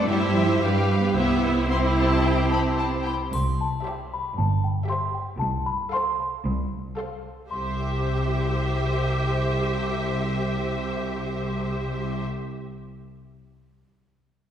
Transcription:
0.08 0.60 G2 soft
0.08 0.34 G3 medium
0.08 0.61 E4 medium
0.08 0.60 G4 medium
0.08 0.60 C5 soft
0.08 0.61 E5 medium
0.34 0.60 F3 medium
0.60 1.14 G2 soft
0.60 1.00 G3 medium
0.60 1.14 G4 soft
0.60 1.16 G4 medium
0.60 1.15 B4 soft
0.60 1.16 F5 soft
1.01 1.07 B3 medium
1.14 3.12 C2 soft
1.14 1.68 B3 medium
1.14 3.06 E4 medium
1.14 1.69 G4 soft
1.14 1.69 C5 soft
1.14 1.69 E5 soft
1.69 3.05 C4 soft
1.69 3.09 G4 medium
1.69 3.09 C5 soft
1.69 1.77 C6 soft
1.98 2.24 A5 soft
2.24 2.51 G5 soft
2.51 2.77 A5 soft
2.51 2.59 B5 soft
2.78 2.86 A5 soft
2.78 3.04 B5 soft
3.05 3.13 G5 soft
3.05 3.31 B5 medium
3.32 3.74 C2 soft
3.32 3.58 C6 soft
3.32 triangle soft
3.61 3.84 A5 soft
3.84 4.25 G4 soft
3.84 4.24 C5 soft
3.84 4.24 E5 soft
3.89 4.11 G5 soft
4.14 4.37 B5 medium
4.37 4.78 G1 soft
4.37 4.78 G2 medium
4.37 4.62 A5 soft
4.64 4.88 G5 soft
4.89 5.28 G4 soft
4.89 5.28 C5 soft
4.89 5.28 E5 soft
4.89 5.13 C6 medium
5.14 5.39 G5 medium
5.39 5.82 C2 medium
5.39 5.82 C2 soft
5.39 5.64 A5 medium
5.66 5.91 B5 medium
5.92 6.32 A4 medium
5.92 6.32 C5 medium
5.92 6.31 F5 medium
5.92 6.42 C6 medium
6.44 6.87 C2 medium
6.98 7.38 A4 soft
6.98 7.39 C5 soft
6.98 7.39 F5 soft
7.51 12.23 C2 soft
7.51 12.24 C2 soft
7.51 12.23 G4 soft
7.51 12.23 C5 soft
7.51 12.24 E5 soft
7.51 12.22 C6 soft

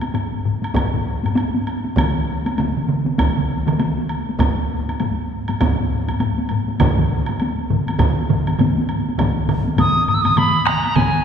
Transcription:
0.01 taiko high medium
0.01 high woodblock soft
0.14 taiko low-mid medium
0.14 taiko high medium
0.14 high woodblock soft
0.32 taiko low-mid medium
0.45 taiko low-mid medium
0.62 taiko high medium
0.62 high woodblock soft
0.74 taiko medium
0.74 taiko high medium
0.74 high woodblock medium
0.94 taiko low-mid loud
1.23 taiko low-mid medium
1.23 taiko high medium
1.23 high woodblock soft
1.35 taiko high medium
1.35 high woodblock soft
1.54 taiko high medium
1.67 high woodblock soft
1.84 taiko high medium
1.97 taiko medium
1.97 taiko mid medium
1.97 taiko high medium
1.97 high woodblock medium
2.46 taiko high medium
2.46 high woodblock soft
2.58 taiko mid medium
2.58 taiko high medium
2.58 high woodblock soft
2.77 taiko mid medium
2.88 taiko mid medium
3.06 taiko high medium
3.18 taiko medium
3.18 taiko high medium
3.18 high woodblock medium
3.37 taiko mid medium
3.66 taiko mid loud
3.66 taiko high medium
3.66 high woodblock soft
3.80 taiko high medium
3.80 high woodblock soft
3.98 taiko high medium
4.09 high woodblock soft
4.29 taiko high soft
4.39 taiko loud
4.39 taiko low-mid medium
4.39 taiko high medium
4.39 high woodblock medium
4.89 taiko high medium
4.89 high woodblock soft
5.00 taiko low-mid medium
5.00 taiko high medium
5.00 high woodblock soft
5.48 taiko low-mid medium
5.48 taiko high medium
5.48 high woodblock soft
5.61 taiko loud
5.61 taiko low-mid medium
5.61 taiko high medium
5.61 high woodblock medium
5.79 taiko low-mid medium
5.91 taiko low-mid medium
6.08 taiko low-mid medium
6.08 taiko high medium
6.08 high woodblock soft
6.20 taiko low-mid medium
6.20 taiko high medium
6.20 high woodblock soft
6.38 taiko high medium
6.49 taiko low-mid loud
6.49 high woodblock soft
6.68 taiko high soft
6.79 taiko loud
6.79 taiko low-mid loud
6.79 taiko mid medium
6.79 taiko high medium
6.79 high woodblock medium
6.97 taiko low-mid medium
6.97 taiko mid loud
7.26 taiko high medium
7.26 high woodblock soft
7.40 taiko high medium
7.40 high woodblock soft
7.70 taiko low-mid medium
7.70 taiko mid medium
7.88 taiko high medium
7.88 high woodblock soft
7.99 taiko loud
7.99 taiko low-mid medium
7.99 taiko mid medium
7.99 taiko high medium
7.99 high woodblock medium
8.29 taiko low-mid medium
8.29 taiko mid loud
8.47 taiko high medium
8.47 high woodblock soft
8.59 taiko low-mid medium
8.59 taiko mid medium
8.59 taiko high medium
8.59 high woodblock soft
8.78 taiko high soft
8.89 high woodblock soft
9.09 taiko high medium
9.18 taiko medium
9.18 taiko low-mid medium
9.18 taiko mid medium
9.18 taiko high medium
9.18 high woodblock medium
9.48 taiko low-mid medium
9.48 taiko mid loud
9.48 high woodblock soft
9.67 taiko high soft
9.77 10.06 D#6 medium
9.77 taiko medium
9.77 taiko low-mid loud
9.77 taiko mid loud
9.77 taiko high medium
9.77 high woodblock medium
10.08 10.16 D#6 medium
10.08 taiko low-mid medium
10.08 taiko mid medium
10.08 high woodblock soft
10.14 10.24 E6 medium
10.22 10.39 D#6 medium
10.22 taiko low-mid medium
10.22 taiko high medium
10.22 high woodblock soft
10.26 taiko mid medium
10.37 10.69 B5 medium
10.37 taiko low-mid medium
10.37 taiko mid medium
10.37 taiko high medium
10.37 high woodblock medium
10.65 10.97 A#5 medium
10.65 taiko rim medium
10.65 high woodblock soft
10.84 taiko high soft
10.84 high woodblock soft
10.95 11.24 G#5 medium
10.95 taiko medium
10.95 taiko low-mid medium
10.95 taiko mid loud
10.95 taiko high medium
10.95 high woodblock medium

